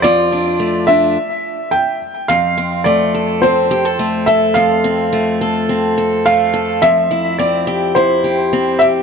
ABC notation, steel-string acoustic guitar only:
X:1
M:4/4
L:1/16
Q:1/4=106
K:F
V:1 name="Steel-string acoustic guitar"
[F,,F]2 D2 A,2 D2 z8 | F,,2 C2 A,2 A2 C2 G A A,2 A2 | F,,2 C2 A,2 A2 C2 A2 A,2 A2 | F,,2 E2 C2 G2 E2 G2 C2 G2 |]